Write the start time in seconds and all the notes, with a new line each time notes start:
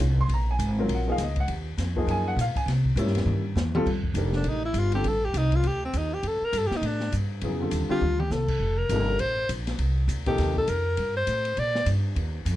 0.00 C2
0.18 C6, kick
0.28 A#1, ride
0.34 A#5
0.51 G#5
0.59 G#1, hi-hat pedal, ride
0.79 F#3 C4 F4 A#4
0.88 A#1, ride
0.95 F#5
1.07 F3 A#3 D#4 G#4
1.12 F5
1.18 C#2, snare, hi-hat pedal, ride
1.24 D#5
1.36 kick, ride
1.40 F#5
1.48 D#2, ride
1.78 F2, snare, hi-hat pedal, ride
1.96 F3 A#3 D#4 G#4, kick
2.07 F#2 G#5, ride
2.28 F#5
2.36 A#2, hi-hat pedal, ride
2.41 F5
2.55 G#5, muted upright bass stroke, kick, ride
2.66 C3, snare, ride
2.85 kick
2.96 G#2 G3 A#3 C#4 E4, hi-hat pedal, ride
3.06 G2, snare
3.15 E2, snare, ride
3.25 G2, mid tom
3.55 E2, snare, hi-hat pedal
3.75 G3 C4 F4 A4, mid tom
3.86 F2, kick, crash
4.04 kick
4.14 F1 D#3 D4 G4 A4 A#4, hi-hat pedal, ride
4.33 D4, snare
4.44 A1, ride
4.49 D#4
4.65 E4
4.74 G1, hi-hat pedal, ride
4.79 F4
4.92 D3 G3 C4 F4 G4 A4, ride
5.04 A1, ride
5.08 A4
5.25 G4
5.34 C2 D#4, hi-hat pedal, ride
5.52 kick, ride
5.56 F4
5.63 D2 G4, ride
5.85 C4
5.93 D#2, hi-hat pedal, ride
5.97 D#4
6.14 G4
6.23 F2, ride
6.28 A4
6.41 A#4, muted upright bass stroke
6.53 G2, hi-hat pedal, ride
6.58 A4
6.67 G4
6.71 muted upright bass stroke, snare
6.76 D#4
6.82 A2, ride
6.86 D4
7.00 snare
7.12 G2, hi-hat pedal, ride
7.41 F2 C#3 F#3 B3 E4 G#4, ride
7.61 D3 G3 C4 F4 A4
7.71 D#2, hi-hat pedal, ride
7.89 D3 G3 C4 F4 G4, muted upright bass stroke
8.01 D2, mid tom
8.20 G4, mid tom
8.31 C2 A4, snare, hi-hat pedal
8.48 kick, crash
8.60 F1
8.78 A#4
8.89 G1 C3 F3 A#3 D#4 A4, hi-hat pedal, ride
9.19 A1 C5, ride
9.49 A#1, hi-hat pedal, ride
9.67 snare, ride
9.79 C2, ride
10.08 D2, hi-hat pedal, ride
10.26 C3 F3 A#3 D#4 G4 A4, kick, ride
10.38 D#2, snare, ride
10.56 A4, kick
10.68 F2 A#4, hi-hat pedal, ride
10.97 G2, ride
11.17 C5
11.27 A2, hi-hat pedal, ride
11.45 ride
11.57 A#2 D5, ride
11.75 snare
11.86 G2, hi-hat pedal, ride
12.16 D#2, ride
12.45 F2, hi-hat pedal, ride